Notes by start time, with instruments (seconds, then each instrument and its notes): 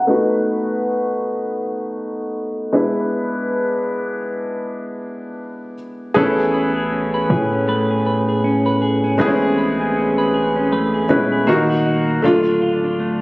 Already playing: grand piano F#5 A#5
0.07 grand piano A3 B3 D#4 F#4 B4
2.73 grand piano G#3 B3 D4 E4 B4
6.14 808-style bass A1, clean electric guitar A3 B4, grand piano B3 C#4 E4 G#4 A4
6.38 clean electric guitar G#4
6.54 clean electric guitar B4
6.76 clean electric guitar G#4
6.92 clean electric guitar C#4
7.14 clean electric guitar B4
7.30 808-style bass A2, clean electric guitar G#4
7.52 clean electric guitar C#4
7.68 clean electric guitar A3 B4
7.90 clean electric guitar G#4
8.06 clean electric guitar B4
8.29 clean electric guitar G#4
8.44 clean electric guitar C#4
8.66 clean electric guitar B4
8.82 clean electric guitar G#4
9.04 clean electric guitar C#4
9.18 808-style bass A1, grand piano G#3 B3 C4 E4 G#4, clean electric guitar A3 B4
9.26 grand piano C#4
9.42 clean electric guitar G#4
9.58 clean electric guitar B4
9.80 clean electric guitar G#4
9.96 clean electric guitar C#4
10.18 clean electric guitar B4
10.34 clean electric guitar G#4
10.56 clean electric guitar C#4
10.72 clean electric guitar A3 B4
10.94 clean electric guitar G#4
11.09 808-style bass D#1, grand piano G#3 B3 C#4 E4 B4, clean electric guitar B4
11.32 clean electric guitar G#4
11.47 clean electric guitar D#3, grand piano A#3 D#4 F#4
11.70 clean electric guitar F#4
11.86 clean electric guitar D#4
12.08 clean electric guitar A#3
12.22 808-style bass D1, clean electric guitar D3 F4, grand piano A3 D4 F4
12.46 clean electric guitar D4
12.62 clean electric guitar F4
12.84 clean electric guitar D4
13.00 clean electric guitar A3